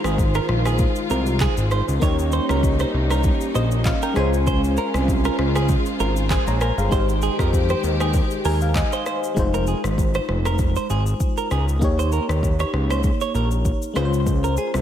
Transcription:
Already playing: D#3 G#3 D#4 F4 C5
0.04 G#1 G#4, cross-stick, shaker
0.18 kick, shaker
0.34 A#4, cross-stick, shaker
0.49 A#1, cross-stick
0.65 G#4, cross-stick, shaker
0.78 kick, shaker
0.96 shaker
1.10 C2 A#4, shaker
1.26 shaker
1.40 G#4, kick, clap, shaker
1.57 G#1, shaker
1.71 C5, cross-stick, shaker
1.88 C#2, shaker
2.00 D#2 G3 A#3 C#4 D#4 G4 C#5, kick, shaker
2.04 C#5
2.19 shaker
2.32 C5, shaker
2.49 C#2 A#4, cross-stick, shaker
2.63 kick, shaker
2.79 C5, cross-stick, shaker
2.94 C2
3.10 A#4, cross-stick, shaker
3.24 kick, shaker
3.41 shaker
3.55 A#1 C5 D#5, shaker
3.71 shaker
3.85 F5, kick, clap, shaker
4.02 A#4 G5, shaker
4.14 C#2 G#3 C#4 F4 G#4 C5 G#5, cross-stick, shaker
4.19 C5
4.34 shaker
4.47 C5, kick, shaker
4.64 shaker
4.77 A#4, shaker
4.94 C2 G#4, cross-stick, shaker
5.08 kick, shaker
5.25 A#4, cross-stick, shaker
5.39 C#2, cross-stick
5.56 G#4, cross-stick, shaker
5.69 kick, shaker
5.86 shaker
6.00 G#1 A#4, shaker
6.16 shaker
6.30 G#4 C5 G#5, kick, clap, shaker
6.47 A#1 C#5 A#5, shaker
6.61 A#4 C5 G#5, cross-stick, shaker
6.78 G1 G#4 F5, shaker
6.89 G#1 D#3 G#3 D#4 G4 C5, kick, shaker
6.94 C5
7.09 shaker
7.22 G#4, shaker
7.39 F2 A#4, kick, cross-stick, shaker
7.53 kick, shaker
7.69 C5, cross-stick, shaker
7.84 D#2, shaker
8.00 G#4, cross-stick, shaker
8.14 kick, shaker
8.31 shaker
8.45 D#2 A#4 G#5, open hi-hat, shaker
8.61 F5, shaker
8.75 D#5, kick, clap, shaker
8.92 C5, shaker
9.06 C5, cross-stick, shaker
9.24 shaker
9.34 F1 G#3 D#4 F4, kick, shaker
9.39 C5
9.54 A#4, shaker
9.67 G#4, shaker
9.84 G#1, cross-stick, shaker
9.98 kick, shaker
10.14 C5, cross-stick, shaker
10.29 F1, cross-stick
10.45 A#4, cross-stick, shaker
10.58 kick, shaker
10.76 C5, shaker
10.90 G#1 G#4, shaker
11.06 shaker
11.20 kick, shaker
11.37 A#4, shaker
11.51 C#2 G#4, cross-stick, shaker
11.69 shaker
11.79 D#2 A#3 D#4 G4, kick, shaker
11.84 C#5
11.99 C5, shaker
12.12 A#4, shaker
12.29 D#2, cross-stick, shaker
12.43 kick, shaker
12.59 C#5, cross-stick, shaker
12.74 C#2, cross-stick
12.90 C5, cross-stick, shaker
13.03 kick, shaker
13.21 C#5, shaker
13.35 A#1 A#4, shaker
13.51 shaker
13.65 kick, shaker
13.82 shaker
13.94 C#2 G#3 C#4 F4 C5, cross-stick, shaker
13.98 B4
14.05 C5
14.13 shaker
14.27 kick, shaker
14.44 A#4, shaker
14.57 G#4, shaker
14.74 C2, cross-stick, shaker

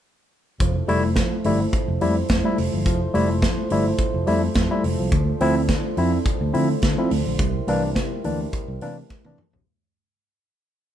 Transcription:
0.60 F1 F3 E4 A4 C5, kick, closed hi-hat, muted conga
0.88 F1 G3 A3 E4, open hi-hat, muted conga, high conga
1.04 A3 E4
1.16 F3, kick, snare, closed hi-hat, muted conga
1.31 high conga
1.44 G1 G3 A3 E4, open hi-hat, muted conga, low conga
1.60 A3 E4
1.73 kick, closed hi-hat, muted conga
1.88 F1
2.01 F2 G3 A3 E4, open hi-hat, muted conga, high conga
2.28 F2, kick, snare, closed hi-hat, high conga
2.44 G3 A3 E4
2.58 F1, open hi-hat, high conga, low conga
2.74 G1 F3
2.86 F1 F3, kick, closed hi-hat
3.14 F1 G3 A3 E4, open hi-hat, muted conga, high conga
3.30 A3 E4
3.42 F3, kick, snare, closed hi-hat
3.57 high conga
3.70 G1 G3 A3 E4, open hi-hat, muted conga, low conga
3.87 A3 E4
3.98 kick, closed hi-hat, muted conga
4.14 F1
4.27 F2 G3 A3 E4, open hi-hat, muted conga, high conga
4.54 F2, kick, snare, closed hi-hat, high conga
4.71 G3 A3 E4
4.84 F1, open hi-hat, muted conga, high conga, low conga
4.99 C2 F3
5.12 D2 D3 D4 C5, kick, closed hi-hat, muted conga
5.40 D2 F3 C4 E4, open hi-hat, muted conga, high conga
5.55 C4 E4
5.69 D3, kick, snare, closed hi-hat
5.84 high conga
5.97 F2 F3 C4 E4, open hi-hat, muted conga, low conga
6.13 C4 E4
6.25 kick, closed hi-hat, muted conga
6.41 D2
6.54 D3 F3 C4 E4, open hi-hat, muted conga, high conga
6.82 D3, kick, snare, closed hi-hat, muted conga, high conga
6.98 F3 C4 E4
7.10 D2, open hi-hat, muted conga, high conga, low conga
7.26 A#1 D3
7.39 C2 C3 G3 E4 A#4, kick, closed hi-hat, muted conga
7.67 C2 E3 A#3 D4, open hi-hat, muted conga, high conga
7.84 A#3 D4
7.95 C3, kick, snare, closed hi-hat
8.12 high conga
8.24 D2 E3 A#3 D4, open hi-hat, low conga
8.41 A#3 D4
8.53 kick, closed hi-hat, muted conga
8.68 C2
8.81 C3 E3 A#3 D4, open hi-hat, high conga
9.09 kick, snare, high conga
9.25 C3 E3 A#3 D4, high tom
9.38 mid tom, muted conga, high conga, low conga
9.53 A#1 C3, floor tom

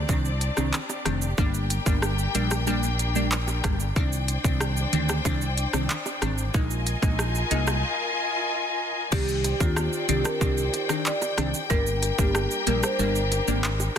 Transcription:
Already playing: C4 D4 G4 D5
0.09 C2 D#3 C4 D4, kick, high bongo, shaker
0.25 shaker
0.41 closed hi-hat, shaker
0.57 C2 D#3 C4 D4, cross-stick, shaker
0.73 clap, shaker
0.89 high bongo, shaker
1.05 F1 D#3 C4 D4, cross-stick, closed hi-hat, low bongo, shaker
1.22 shaker
1.38 G1 G3 A#3 D4 A#4 G5, kick, shaker
1.54 shaker
1.70 closed hi-hat, shaker
1.86 G1 G3 A#3 D4, kick, shaker
2.02 cross-stick, shaker
2.19 shaker
2.35 A#1 G3 A#3 D4, closed hi-hat, shaker
2.51 cross-stick, high bongo, shaker
2.67 G3 A#3 D4, high bongo, shaker
2.83 shaker
2.99 closed hi-hat, shaker
3.15 G3 A#3 D4, shaker
3.32 clap, shaker
3.48 high bongo, shaker
3.64 G1 G3 A#3 D4, kick, cross-stick, closed hi-hat, low bongo, shaker
3.80 shaker
3.96 C2 D#3 C4 D4 C5 D5 G5, kick, shaker
4.13 shaker
4.28 closed hi-hat, shaker
4.44 C2 D#3 C4 D4, kick, shaker
4.61 cross-stick, shaker
4.77 shaker
4.93 D2 D#3 C4 D4, closed hi-hat, shaker
5.09 cross-stick, high bongo, shaker
5.25 C2 D#3 C4 D4, kick, high bongo, shaker
5.41 shaker
5.58 closed hi-hat, shaker
5.73 C2 D#3 C4 D4, cross-stick, shaker
5.90 clap, shaker
6.06 high bongo, shaker
6.22 G#1 D#3 C4 D4, cross-stick, closed hi-hat, low bongo, shaker
6.38 shaker
6.54 A#1 G#3 A#3 D#4 F4 A#4 D#5 G#5, kick, shaker
6.71 shaker
6.87 closed hi-hat, shaker
7.02 A#1 G#3 A#3 D#4, kick, shaker
7.19 cross-stick, shaker
7.35 shaker
7.51 C2 G#3 A#3 D#4, closed hi-hat, shaker
7.67 cross-stick, high bongo, shaker
9.12 C2 D#3 C4 D4 G4 C5 D5 G5, kick, crash, shaker
9.28 shaker
9.44 closed hi-hat, high bongo, shaker
9.60 D#2 D#3 C4 D4 F4, kick, shaker
9.76 cross-stick, high bongo, shaker
9.93 shaker
10.09 C2 D#3 C4 D4 G4, closed hi-hat, shaker
10.25 A#4, cross-stick, high bongo, shaker
10.41 C2 D#3 C4 D4 G4, kick, shaker
10.58 shaker
10.74 closed hi-hat, high bongo, shaker
10.89 D#3 C4 D4, cross-stick, shaker
11.05 D5, clap, shaker
11.22 high bongo, shaker
11.38 C2 D#3 C4 D4, cross-stick, closed hi-hat, low bongo, shaker
11.54 shaker
11.70 G1 G3 A#3 D4 G4 A#4, kick, shaker
11.87 shaker
12.02 closed hi-hat, high bongo, shaker
12.18 G1 G3 A#3 D4 G4, kick, shaker
12.35 cross-stick, high bongo, shaker
12.51 shaker
12.67 A#1 G3 A#3 D4 A#4, closed hi-hat, shaker
12.83 cross-stick, high bongo, shaker
12.99 G1 G3 A#3 D4 A#4, shaker
13.15 shaker
13.32 closed hi-hat, high bongo, shaker
13.48 G#1 G3 A#3 D4, shaker
13.64 clap, shaker
13.80 high bongo, shaker

